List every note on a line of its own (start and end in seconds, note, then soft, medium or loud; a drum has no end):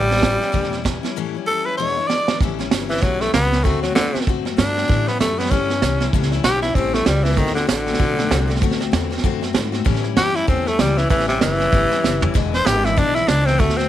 0.00 0.35 A1 loud
0.00 0.10 E3 medium
0.00 0.10 G3 medium
0.00 0.82 G3 loud
0.09 0.20 G3 soft
0.09 0.21 C#4 soft
0.09 0.22 E4 medium
0.09 snare soft
0.17 0.40 E3 medium
0.17 snare soft
0.22 0.41 G3 medium
0.22 0.40 C#4 medium
0.22 0.38 E4 medium
0.22 kick loud
0.22 snare loud
0.22 hi-hat pedal medium
0.39 0.53 G3 soft
0.39 0.53 C#4 medium
0.39 0.53 E4 medium
0.39 snare soft
0.52 0.97 E1 medium
0.52 0.71 A2 loud
0.52 0.72 E3 loud
0.52 0.72 G3 loud
0.52 0.71 C#4 loud
0.52 0.69 E4 loud
0.52 kick loud
0.52 snare soft
0.64 snare soft
0.70 0.83 G3 medium
0.70 0.84 C#4 medium
0.70 0.84 E4 medium
0.70 snare soft
0.84 1.03 E3 medium
0.84 1.03 G3 medium
0.84 1.03 C#4 medium
0.84 1.02 E4 medium
0.84 kick medium
0.84 snare loud
0.84 hi-hat pedal medium
1.03 1.16 G3 medium
1.03 1.16 C#4 medium
1.03 1.16 E4 medium
1.03 snare soft
1.16 1.34 A2 medium
1.16 1.35 E3 loud
1.16 1.35 G3 medium
1.16 1.35 C#4 loud
1.16 1.33 E4 loud
1.35 1.47 G3 soft
1.35 1.48 C#4 medium
1.35 1.47 E4 medium
1.47 1.66 E3 medium
1.47 1.66 G3 medium
1.47 1.66 C#4 medium
1.47 1.65 E4 medium
1.47 1.67 A4 loud
1.66 1.79 G3 soft
1.66 1.79 C#4 soft
1.66 1.78 E4 medium
1.66 1.77 B4 medium
1.77 1.97 E2 medium
1.77 1.97 B2 medium
1.77 1.97 E3 medium
1.77 1.97 G#3 loud
1.77 1.97 D4 medium
1.77 1.96 E4 medium
1.77 2.09 C#5 medium
1.97 2.08 E3 soft
1.97 2.09 G#3 soft
1.97 2.10 D4 medium
1.97 2.09 E4 medium
2.08 2.27 E3 medium
2.08 2.28 G#3 medium
2.08 2.28 D4 medium
2.08 2.39 D5 medium
2.08 snare medium
2.12 2.27 E4 medium
2.28 2.41 E3 soft
2.28 2.42 G#3 soft
2.28 2.41 D4 medium
2.28 2.40 E4 medium
2.28 snare medium
2.41 2.71 A1 medium
2.41 2.59 A2 medium
2.41 2.59 E3 medium
2.41 2.60 G3 medium
2.41 2.59 C#4 loud
2.41 2.57 E4 loud
2.41 kick loud
2.41 snare soft
2.59 2.72 G3 soft
2.59 2.72 C#4 medium
2.59 2.71 E4 medium
2.59 snare soft
2.71 3.01 G1 medium
2.71 2.90 E3 medium
2.71 2.91 G3 medium
2.71 2.90 C#4 medium
2.71 2.88 E4 medium
2.71 snare loud
2.71 hi-hat pedal medium
2.89 3.04 E3 medium
2.89 3.02 G3 soft
2.89 3.02 C#4 medium
2.89 3.02 E4 medium
2.89 snare soft
2.97 snare soft
3.02 3.33 B1 medium
3.02 3.20 A2 medium
3.02 3.21 E3 medium
3.02 3.23 F#3 medium
3.02 3.21 G3 medium
3.02 3.21 C#4 medium
3.02 3.20 E4 medium
3.02 kick loud
3.02 snare soft
3.21 3.33 G3 soft
3.21 3.33 A3 medium
3.21 3.35 C#4 soft
3.21 3.34 E4 soft
3.21 snare soft
3.34 3.64 C#2 loud
3.34 3.52 E3 medium
3.34 3.52 G3 soft
3.34 3.66 B3 loud
3.34 3.52 C#4 medium
3.34 3.50 E4 medium
3.34 snare loud
3.34 hi-hat pedal medium
3.51 3.65 G3 soft
3.51 3.65 C#4 medium
3.51 3.64 E4 medium
3.51 snare soft
3.64 3.95 D2 medium
3.64 3.83 D3 medium
3.64 3.82 A3 medium
3.64 3.83 A3 medium
3.64 3.83 C4 loud
3.64 3.82 F#4 loud
3.64 kick loud
3.64 snare soft
3.82 3.95 F#3 medium
3.82 3.96 A3 soft
3.82 3.97 C4 medium
3.82 3.96 F#4 medium
3.82 snare soft
3.95 4.25 D3 loud
3.95 4.14 D3 medium
3.95 4.15 A3 medium
3.95 4.15 C4 medium
3.95 4.13 F#4 medium
3.95 snare loud
3.95 hi-hat pedal medium
4.14 4.27 A3 medium
4.14 4.28 C4 medium
4.14 4.27 F#4 medium
4.14 muted upright bass stroke soft
4.14 snare soft
4.21 snare soft
4.27 4.57 F#2 medium
4.27 4.45 D3 medium
4.27 4.46 A3 medium
4.27 4.46 C4 loud
4.27 4.44 F#4 medium
4.27 kick loud
4.27 snare soft
4.45 4.57 A3 soft
4.45 4.59 C4 medium
4.45 4.58 F#4 medium
4.45 snare soft
4.57 4.88 G2 loud
4.57 4.76 D3 medium
4.57 4.76 A3 medium
4.57 4.76 C4 medium
4.57 5.09 D4 medium
4.57 4.74 F#4 medium
4.57 snare loud
4.57 hi-hat pedal medium
4.75 4.89 A3 soft
4.75 4.89 C4 medium
4.75 4.88 F#4 medium
4.75 snare soft
4.83 snare soft
4.88 5.07 A2 medium
4.88 5.19 A2 medium
4.88 5.07 E3 medium
4.88 5.07 G3 medium
4.88 5.06 C#4 loud
4.88 5.05 E4 loud
4.88 kick loud
4.88 snare soft
5.06 5.19 G3 soft
5.06 5.20 B3 medium
5.06 5.20 C#4 soft
5.06 5.19 E4 medium
5.06 snare soft
5.19 5.50 F#2 loud
5.19 5.38 E3 medium
5.19 5.38 G3 medium
5.19 5.40 A3 medium
5.19 5.37 C#4 medium
5.19 5.35 E4 medium
5.19 snare loud
5.19 hi-hat pedal loud
5.37 5.50 G3 soft
5.37 5.52 B3 medium
5.37 5.51 C#4 soft
5.37 5.50 E4 medium
5.37 snare soft
5.46 snare soft
5.51 5.81 G2 loud
5.51 5.69 A2 medium
5.51 5.69 E3 medium
5.51 5.70 G3 loud
5.51 6.11 C#4 medium
5.51 5.70 C#4 loud
5.51 5.68 E4 loud
5.51 kick loud
5.51 snare soft
5.70 5.82 G3 soft
5.70 5.83 C#4 medium
5.70 5.82 E4 soft
5.70 snare soft
5.82 6.12 C2 loud
5.82 6.01 E3 medium
5.82 6.01 G3 medium
5.82 6.01 C#4 medium
5.82 snare loud
5.82 hi-hat pedal medium
5.86 5.99 E4 medium
6.00 6.14 G3 medium
6.00 6.14 C#4 medium
6.00 6.13 E4 medium
6.00 snare soft
6.13 6.43 C#2 loud
6.13 6.32 A2 loud
6.13 6.32 E3 loud
6.13 6.32 G3 loud
6.13 6.33 C#4 loud
6.13 6.31 E4 loud
6.13 kick loud
6.13 snare soft
6.22 snare soft
6.32 6.46 C#4 medium
6.32 6.45 E4 medium
6.32 snare soft
6.36 6.45 G3 medium
6.44 6.74 B1 loud
6.44 6.63 E3 medium
6.44 6.64 G3 medium
6.44 6.63 C#4 medium
6.44 6.61 G4 loud
6.44 snare loud
6.44 hi-hat pedal medium
6.48 6.62 E4 medium
6.62 6.76 C#4 soft
6.62 6.77 E4 medium
6.62 6.75 E4 medium
6.62 snare soft
6.66 6.76 G3 soft
6.75 7.05 A1 medium
6.75 6.94 A2 medium
6.75 6.94 E3 medium
6.75 6.94 G3 medium
6.75 6.96 C4 medium
6.75 6.94 C#4 loud
6.75 6.92 E4 medium
6.75 kick loud
6.75 snare soft
6.94 7.06 G3 soft
6.94 7.08 A3 medium
6.94 7.07 C#4 soft
6.94 7.06 E4 medium
6.94 snare soft
7.06 7.36 C#2 loud
7.06 7.24 E3 medium
7.06 7.26 G3 medium
7.06 7.25 G3 medium
7.06 7.25 C#4 medium
7.06 7.24 E4 medium
7.06 snare loud
7.06 hi-hat pedal medium
7.24 7.39 E3 medium
7.24 7.38 C#4 soft
7.24 7.38 E4 medium
7.24 snare soft
7.29 7.37 G3 soft
7.29 snare soft
7.37 7.67 D2 loud
7.37 7.55 D3 medium
7.37 7.54 D#3 medium
7.37 7.56 A3 medium
7.37 7.56 C4 medium
7.37 7.54 F#4 medium
7.37 kick loud
7.37 snare soft
7.46 snare soft
7.55 7.68 D3 medium
7.55 7.69 C4 medium
7.55 7.68 F#4 medium
7.55 snare soft
7.59 7.68 A3 soft
7.67 7.98 A1 loud
7.67 7.86 D3 medium
7.67 8.59 D3 loud
7.67 7.87 A3 medium
7.67 7.86 C4 medium
7.67 7.85 F#4 medium
7.67 snare loud
7.67 hi-hat pedal medium
7.86 7.98 A3 soft
7.86 7.98 C4 soft
7.86 7.99 F#4 medium
7.86 snare soft
7.93 snare soft
7.98 8.30 B1 medium
7.98 8.17 D3 medium
7.98 8.18 A3 medium
7.98 8.17 C4 medium
7.98 8.15 F#4 medium
7.98 kick loud
8.16 8.29 A3 soft
8.16 8.30 C4 medium
8.16 8.30 F#4 medium
8.16 snare soft
8.29 8.61 C2 loud
8.29 8.48 D3 medium
8.29 8.49 A3 medium
8.29 8.48 C4 medium
8.29 8.46 F#4 medium
8.29 snare loud
8.29 hi-hat pedal medium
8.48 8.61 A3 medium
8.48 8.62 C4 soft
8.48 8.61 F#4 medium
8.48 snare soft
8.56 snare soft
8.62 8.92 D2 medium
8.62 8.80 D3 loud
8.62 8.81 A3 loud
8.62 8.79 C4 loud
8.62 8.77 F#4 loud
8.62 kick loud
8.62 snare soft
8.71 snare soft
8.78 8.92 A3 medium
8.78 8.93 C4 medium
8.78 8.92 F#4 medium
8.78 snare soft
8.92 9.23 E2 loud
8.92 9.11 D3 medium
8.92 9.11 A3 medium
8.92 9.11 C4 medium
8.92 9.09 F#4 medium
8.92 snare loud
8.92 hi-hat pedal medium
9.11 9.23 A3 medium
9.11 9.24 C4 medium
9.11 9.24 F#4 medium
9.11 snare soft
9.18 snare soft
9.24 9.54 F#2 medium
9.24 9.42 D3 loud
9.24 9.43 A3 loud
9.24 9.42 C4 loud
9.24 9.40 F#4 loud
9.24 kick loud
9.24 snare soft
9.41 9.53 A3 medium
9.41 9.54 C4 medium
9.41 9.54 F#4 medium
9.41 snare soft
9.53 9.85 G#2 loud
9.53 9.72 D3 medium
9.53 9.73 A3 medium
9.53 9.73 C4 medium
9.53 9.71 F#4 medium
9.53 snare loud
9.53 hi-hat pedal medium
9.72 9.85 A3 medium
9.72 9.86 C4 medium
9.72 9.86 F#4 medium
9.72 snare soft
9.84 10.04 A2 loud
9.84 10.16 A2 loud
9.84 10.04 E3 loud
9.84 10.04 G3 loud
9.84 10.04 C#4 loud
9.84 10.02 E4 loud
9.84 kick loud
9.84 snare soft
9.95 snare soft
10.03 10.17 G3 medium
10.03 10.17 C#4 medium
10.03 10.17 E4 medium
10.03 snare soft
10.16 10.47 F#2 medium
10.16 10.35 E3 medium
10.16 10.36 G3 medium
10.16 10.34 C#4 medium
10.16 10.32 E4 medium
10.16 10.37 G4 loud
10.16 snare loud
10.16 hi-hat pedal medium
10.34 10.47 G3 soft
10.34 10.47 C#4 medium
10.34 10.47 E4 medium
10.34 10.48 E4 loud
10.34 snare soft
10.47 10.78 E2 loud
10.47 10.66 A2 medium
10.47 10.66 E3 medium
10.47 10.67 G3 medium
10.47 10.69 C4 medium
10.47 10.66 C#4 loud
10.47 10.64 E4 loud
10.47 kick loud
10.47 snare soft
10.65 10.79 G3 soft
10.65 10.82 A3 loud
10.65 10.80 C#4 soft
10.65 10.79 E4 medium
10.65 snare soft
10.79 11.09 C#2 loud
10.79 10.98 E3 medium
10.79 10.98 G3 medium
10.79 11.00 G3 medium
10.79 10.97 C#4 medium
10.79 10.95 E4 medium
10.79 snare loud
10.79 hi-hat pedal loud
10.96 11.10 E3 medium
10.96 11.10 G3 soft
10.96 11.10 C#4 medium
10.96 11.10 E4 medium
10.96 snare soft
11.10 11.41 A1 medium
11.10 11.29 A2 medium
11.10 11.28 E3 loud
11.10 11.29 E3 medium
11.10 11.29 G3 medium
11.10 11.29 C#4 loud
11.10 11.27 E4 loud
11.10 kick loud
11.10 snare soft
11.20 snare soft
11.28 11.41 C3 medium
11.28 11.41 G3 soft
11.28 11.42 C#4 medium
11.28 11.41 E4 medium
11.28 snare soft
11.41 11.72 F#1 loud
11.41 11.60 E3 medium
11.41 12.33 E3 loud
11.41 11.60 G3 medium
11.41 11.59 C#4 medium
11.41 11.58 E4 medium
11.41 snare loud
11.41 hi-hat pedal medium
11.59 11.72 G3 medium
11.59 11.73 C#4 medium
11.59 11.72 E4 medium
11.59 snare soft
11.72 11.90 G1 medium
11.72 11.91 A2 medium
11.72 11.91 E3 medium
11.72 11.92 G3 medium
11.72 11.90 C#4 loud
11.72 11.88 E4 loud
11.72 kick loud
11.72 snare soft
11.90 12.03 G3 soft
11.90 12.04 C#4 medium
11.90 12.03 E4 medium
11.90 snare soft
12.03 12.34 F#1 loud
12.03 12.22 E3 medium
12.03 12.22 G3 medium
12.03 12.22 C#4 medium
12.03 12.20 E4 medium
12.03 snare medium
12.03 hi-hat pedal medium
12.21 12.35 G3 medium
12.21 12.35 C#4 medium
12.21 12.34 E4 medium
12.21 floor tom loud
12.34 12.65 E1 medium
12.34 12.53 E2 loud
12.34 12.53 B2 medium
12.34 12.53 E3 loud
12.34 12.53 G#3 loud
12.34 12.52 D4 loud
12.34 12.51 E4 loud
12.34 kick loud
12.34 snare soft
12.52 12.64 E3 soft
12.52 12.65 G#3 soft
12.52 12.66 D4 medium
12.52 12.65 E4 medium
12.52 12.68 C5 loud
12.52 snare soft
12.65 12.96 G#1 loud
12.65 12.84 E3 medium
12.65 12.84 G#3 medium
12.65 12.83 D4 medium
12.65 12.82 E4 medium
12.65 12.86 G4 loud
12.65 snare loud
12.65 hi-hat pedal medium
12.83 12.96 E3 soft
12.83 12.97 G#3 medium
12.83 12.97 D4 soft
12.83 12.96 E4 soft
12.83 13.00 E4 medium
12.83 snare soft
12.96 13.27 B1 loud
12.96 13.15 E2 medium
12.96 13.16 B2 medium
12.96 13.16 E3 medium
12.96 13.16 G#3 medium
12.96 13.15 D4 loud
12.96 13.17 D4 loud
12.96 13.14 E4 loud
12.96 kick loud
12.96 snare soft
13.15 13.26 E3 soft
13.15 13.27 G#3 soft
13.15 13.28 D4 medium
13.15 13.28 E4 medium
13.15 13.30 E4 loud
13.15 snare soft
13.27 13.58 C#2 loud
13.27 13.46 E3 medium
13.27 13.47 G#3 medium
13.27 13.48 D4 medium
13.27 13.46 D4 medium
13.27 13.45 E4 medium
13.27 snare loud
13.27 hi-hat pedal medium
13.46 13.58 E3 soft
13.46 13.59 G#3 medium
13.46 13.61 C4 loud
13.46 13.60 D4 medium
13.46 13.59 E4 medium
13.46 snare soft
13.58 13.89 D2 loud
13.58 13.77 D3 medium
13.58 13.78 A3 medium
13.58 13.78 C4 loud
13.58 13.75 F#4 medium
13.58 kick loud
13.58 snare soft
13.69 snare soft
13.77 13.89 A3 soft
13.77 13.89 C4 medium
13.77 13.89 C4 soft
13.77 13.89 F#4 medium
13.77 snare soft